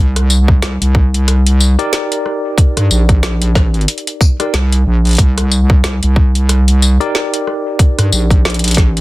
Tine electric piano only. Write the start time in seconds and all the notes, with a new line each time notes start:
1.79 D#4 G4 A#4 D5
4.40 D#4 G4 A#4 D5
7.00 D#4 G4 A#4 D5